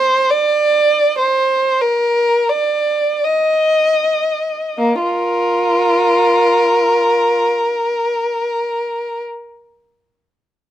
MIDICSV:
0, 0, Header, 1, 2, 480
1, 0, Start_track
1, 0, Key_signature, -2, "major"
1, 0, Tempo, 500000
1, 10278, End_track
2, 0, Start_track
2, 0, Title_t, "Violin"
2, 0, Program_c, 0, 40
2, 0, Note_on_c, 0, 72, 67
2, 272, Note_off_c, 0, 72, 0
2, 289, Note_on_c, 0, 74, 65
2, 1124, Note_off_c, 0, 74, 0
2, 1135, Note_on_c, 0, 72, 56
2, 1721, Note_off_c, 0, 72, 0
2, 1732, Note_on_c, 0, 70, 56
2, 2378, Note_off_c, 0, 70, 0
2, 2391, Note_on_c, 0, 74, 47
2, 3113, Note_on_c, 0, 75, 38
2, 3116, Note_off_c, 0, 74, 0
2, 4586, Note_off_c, 0, 75, 0
2, 4592, Note_on_c, 0, 58, 41
2, 4830, Note_off_c, 0, 58, 0
2, 4836, Note_on_c, 0, 65, 36
2, 4838, Note_on_c, 0, 70, 44
2, 7149, Note_off_c, 0, 65, 0
2, 8844, Note_off_c, 0, 70, 0
2, 10278, End_track
0, 0, End_of_file